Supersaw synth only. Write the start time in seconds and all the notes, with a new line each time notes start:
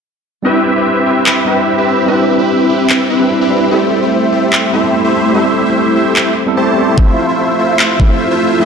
0.45 C4 E4 G4 B4 E5
0.76 C4 E4 G4 B4 E5
1.06 C4 E4 G4 B4 E5
1.47 C4 E4 G4 B4 E5
1.78 C4 E4 G4 B4 E5
2.08 C4 E4 G4 B4 E5
2.39 C4 E4 G4 B4 E5
2.69 C4 E4 G4 B4 E5
3.10 C4 E4 G4 B4 E5
3.41 C4 E4 G4 B4 E5
3.71 A3 E4 G4 C5 E5
4.02 A3 E4 G4 C5 E5
4.32 A3 E4 G4 C5 E5
4.73 A3 E4 G4 C5 E5
5.04 A3 E4 G4 C5 E5
5.34 A3 E4 G4 C5 E5
5.66 A3 E4 G4 C5 E5
5.96 A3 E4 G4 C5 E5
6.57 A3 E4 G4 C5 A5
6.98 A3 E4 F4 C5
7.29 A3 E4 F4 C5 E5
7.59 A3 E4 F4 C5 E5
8.00 A3 E4 F4 C5 E5
8.31 A3 E4 F4 C5 E5
8.61 A3 E4 F4 C5 E5